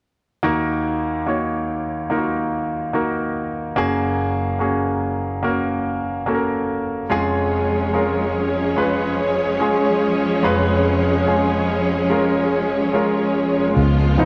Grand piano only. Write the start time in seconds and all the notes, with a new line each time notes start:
0.43 D#2 D#3 A#3 D#4 F#4 A#4
1.26 A#3 D#4 F#4 C#5
2.10 A#3 D#4 F4 A#4
2.17 F#4
2.93 A#3 D#4 F#4 A#4
3.76 F#1 F#2 A#3 C#4 F#4 G#4
4.59 A#3 C#4 F#4 G#4
5.43 A#3 C#4 F#4 A#4
6.26 A#3 C#4 F#4 A4
6.35 A#4
7.10 F1 F2 G#3 C#4 F4 G#4
7.93 G#3 C#4 F4 A#4
8.76 G#3 C#4 F4 B4
9.60 G#3 C#4 F4 G#4
10.43 F1 F2 G#3 C#4 F4 B4
11.26 G#3 C#4 F4 G#4
12.10 G#3 C#4 F4 A#4
12.93 G#3 C#4 F4 A#4
14.18 F3 B3 D#4